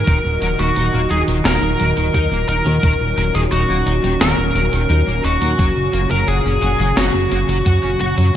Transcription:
Already playing: D#3 F#3 F#4 A#4
0.07 D#1 A#2 D#3 D#4, kick, closed hi-hat
0.25 D#1
0.42 D#1 F#3, closed hi-hat
0.59 D#1 D#3 F#4, closed hi-hat
0.76 D#1 D#4, closed hi-hat
0.94 D#1 A#3
1.10 D#1 D#4 G#4, closed hi-hat
1.28 D#1 D#3, closed hi-hat
1.45 D#1 D#3 A#4, snare, closed hi-hat
1.62 D#1
1.80 D#1 F#3, closed hi-hat
1.97 D#1 D#3, closed hi-hat
2.14 D#2 D#4, kick, closed hi-hat
2.32 D#1 A#3
2.48 D#1 D#4 A#4, closed hi-hat
2.66 D#2 D#3, closed hi-hat
2.83 D#1 D#3 C#4, kick, closed hi-hat
3.01 D#1
3.18 D#1 F#3, closed hi-hat
3.35 D#1 D#3 G#4, closed hi-hat
3.51 D#1 D#4 F#4, closed hi-hat
3.69 D#1 A#3
3.87 D#1 D#4, closed hi-hat
4.04 D#1 D#3, closed hi-hat
4.21 D#1 D#3 A#4, snare, closed hi-hat
4.38 D#1
4.56 D#1 F#3, closed hi-hat
4.73 D#1 D#3, closed hi-hat
4.90 D#2 D#4, closed hi-hat
5.07 D#1 A#3
5.25 D#1 D#4 F#4, closed hi-hat
5.42 D#2 D#3, closed hi-hat
5.59 F#1 C#3 F#3 F#4, kick, closed hi-hat
5.76 F#1
5.93 F#1 A#3, closed hi-hat
6.11 F#1 F#3 A#4, closed hi-hat
6.28 F#1 F#4 G#4, closed hi-hat
6.45 F#1 C#4
6.62 F#1 F#4, closed hi-hat
6.80 F#1 F#3, closed hi-hat
6.97 F#1 F#3 F#4, snare, closed hi-hat
7.14 F#1
7.32 F#1 A#3, closed hi-hat
7.49 F#1 F#3, closed hi-hat
7.66 F#2 F#4, kick, closed hi-hat
7.83 F#1 C#4
8.01 F#1 F#4, closed hi-hat
8.18 F#2 F#3, closed hi-hat

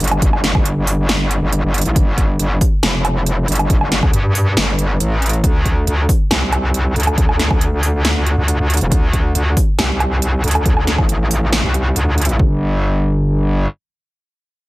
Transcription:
0.00 G1, closed hi-hat
0.04 closed hi-hat
0.08 closed hi-hat, low woodblock
0.22 G1, kick, closed hi-hat
0.33 low woodblock
0.44 snare, closed hi-hat
0.55 G1, kick, low woodblock
0.66 closed hi-hat
0.87 open hi-hat
1.09 snare, closed hi-hat
1.31 closed hi-hat
1.42 G1
1.52 closed hi-hat
1.64 G1
1.74 closed hi-hat
1.78 closed hi-hat
1.81 A1, closed hi-hat
1.85 closed hi-hat
1.96 G1, kick, closed hi-hat
2.18 kick, closed hi-hat
2.39 G1, closed hi-hat
2.61 kick, open hi-hat
2.83 F1, snare, closed hi-hat, low woodblock
3.05 closed hi-hat, low woodblock
3.26 closed hi-hat
3.48 G1, closed hi-hat
3.52 closed hi-hat
3.55 closed hi-hat, low woodblock
3.70 G1, kick, closed hi-hat
3.81 low woodblock
3.92 snare, closed hi-hat
4.03 D2, kick, low woodblock
4.13 G2, closed hi-hat
4.35 open hi-hat
4.57 G1, snare, closed hi-hat
4.79 closed hi-hat
5.00 A1, closed hi-hat
5.22 closed hi-hat
5.26 closed hi-hat
5.29 closed hi-hat
5.33 closed hi-hat
5.44 D2, kick, closed hi-hat
5.65 kick, closed hi-hat
5.87 D2, closed hi-hat
6.09 kick, open hi-hat
6.31 C2, snare, closed hi-hat, low woodblock
6.53 closed hi-hat, low woodblock
6.74 closed hi-hat
6.96 D2, closed hi-hat
7.00 closed hi-hat
7.03 closed hi-hat
7.07 closed hi-hat, low woodblock
7.18 D2, kick, closed hi-hat
7.29 low woodblock
7.39 snare, closed hi-hat
7.51 D2, kick, low woodblock
7.61 closed hi-hat
7.83 open hi-hat
8.05 snare, closed hi-hat
8.27 closed hi-hat
8.38 D2
8.48 closed hi-hat
8.59 D2
8.70 closed hi-hat
8.74 closed hi-hat
8.77 E1, closed hi-hat
8.81 closed hi-hat
8.92 D2, kick, closed hi-hat
9.13 kick, closed hi-hat
9.35 D2, closed hi-hat
9.57 kick, open hi-hat
9.79 C2, snare, closed hi-hat, low woodblock
10.00 closed hi-hat, low woodblock
10.22 closed hi-hat
10.44 D2, closed hi-hat
10.48 closed hi-hat
10.51 closed hi-hat
10.55 closed hi-hat, low woodblock
10.66 D2, kick, closed hi-hat
10.77 low woodblock
10.87 snare, closed hi-hat
10.98 A1, kick, low woodblock
11.09 closed hi-hat
11.31 open hi-hat
11.53 snare, closed hi-hat
11.64 C2
11.74 closed hi-hat
11.96 D2, closed hi-hat
12.18 closed hi-hat
12.21 closed hi-hat
12.25 closed hi-hat
12.29 closed hi-hat
12.39 G1, kick

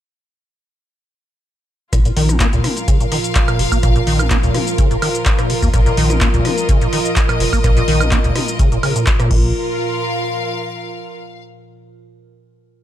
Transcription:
1.93 A#1 A#2 F3 F4 A#4, kick, cross-stick, closed hi-hat, shaker
2.05 A#2, closed hi-hat, shaker
2.15 A#1 D#3 A#4, open hi-hat
2.29 F3, cross-stick, closed hi-hat, mid tom, shaker
2.40 A#3, kick, clap, closed hi-hat, mid tom, shaker
2.50 C#2 A#2 F5, closed hi-hat, shaker
2.64 C#3, cross-stick, open hi-hat, mid tom
2.77 closed hi-hat, shaker
2.88 C#3, kick, closed hi-hat, shaker
3.00 A#2, closed hi-hat, shaker
3.12 D#3, cross-stick, open hi-hat
3.24 closed hi-hat, shaker
3.35 kick, clap, closed hi-hat, shaker
3.48 A#2, cross-stick, closed hi-hat, high woodblock, shaker
3.59 F1 C#3, open hi-hat
3.72 A#3, kick, high woodblock, shaker
3.83 A#1 A#2, kick, cross-stick, closed hi-hat, shaker
3.96 A#2, closed hi-hat, shaker
4.07 A#1 D#3, open hi-hat
4.19 F3, cross-stick, mid tom, high woodblock, shaker
4.30 A#3, kick, clap, closed hi-hat, mid tom, shaker
4.43 C#2 A#2, closed hi-hat, shaker
4.54 C#3, cross-stick, open hi-hat, mid tom
4.67 closed hi-hat, shaker
4.78 C#3, kick, closed hi-hat, shaker
4.91 F1 A#2, closed hi-hat, shaker
5.02 D#3, cross-stick, open hi-hat, high woodblock
5.15 closed hi-hat, shaker
5.25 kick, clap, closed hi-hat, shaker
5.39 A#2, cross-stick, closed hi-hat, shaker
5.50 C#3, open hi-hat
5.62 D#2 A#3 D#5, kick, shaker
5.74 A#1 A#2, kick, cross-stick, closed hi-hat, shaker
5.86 A#2, closed hi-hat, shaker
5.97 A#1 D#3, open hi-hat
6.10 F3, cross-stick, closed hi-hat, mid tom, shaker
6.21 A#3, kick, clap, closed hi-hat, mid tom, shaker
6.34 C#2 A#2, closed hi-hat, shaker
6.45 C#3, cross-stick, open hi-hat, mid tom
6.58 closed hi-hat, shaker
6.69 C#3, kick, closed hi-hat, shaker
6.81 A#2, closed hi-hat, shaker
6.93 D#3, cross-stick, open hi-hat
7.05 closed hi-hat, shaker
7.16 kick, clap, closed hi-hat, shaker
7.29 A#2, cross-stick, closed hi-hat, high woodblock, shaker
7.40 F1 C#3, open hi-hat
7.53 A#3, kick, high woodblock, shaker
7.64 A#1 A#2, kick, cross-stick, closed hi-hat, shaker
7.77 A#2, closed hi-hat, shaker
7.88 A#1 D#3, open hi-hat
8.01 F3, cross-stick, closed hi-hat, mid tom, high woodblock, shaker
8.11 A#3, kick, clap, closed hi-hat, mid tom, shaker
8.24 C#2 A#2, closed hi-hat, shaker
8.36 C#3, cross-stick, open hi-hat, mid tom
8.48 closed hi-hat, shaker
8.59 C#3, kick, closed hi-hat, shaker
8.72 F1 A#2, closed hi-hat, shaker
8.83 C#3, cross-stick, open hi-hat, high woodblock
8.96 A#2, closed hi-hat, shaker
9.06 kick, clap, closed hi-hat, shaker
9.20 A#2, cross-stick, closed hi-hat, shaker
9.31 A#1 A#2 F4, kick, crash
9.38 A#4
9.69 F5

